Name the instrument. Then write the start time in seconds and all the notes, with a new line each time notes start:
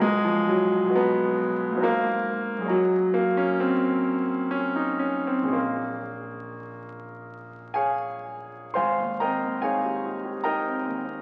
grand piano
Already playing: B1 F#4 B4 D#5
0.00 G#3 A#5
0.25 F3
0.49 F#3
0.84 B1 F#4
0.90 B4 D#5
0.95 B3 A#5
1.72 G#2 F#4
1.77 C5 D#5
1.82 A#3 A#5
2.58 F#2 G#4
2.63 C#5 D#5
2.68 F#3 A#5
3.14 A#3
3.37 C#4
3.60 C4
4.51 C#4
4.76 D#4
4.99 C#4
5.27 C4
5.42 A#1 G#4
5.47 C#5 D#5
5.52 A#3 C6
7.74 G#4 C#5 F5 G#5
8.74 G#1 C5 F5 G#5 C6
9.00 D#2
9.20 C4 A#4 D#5 G5 A#5
9.44 D#2
9.62 D#4 G#4 C#5 F5 G#5
9.85 G4
10.06 D#4
10.25 G4
10.44 D#4 A#4 D#5 G5 A#5
10.67 C4
10.86 D#2
11.06 C4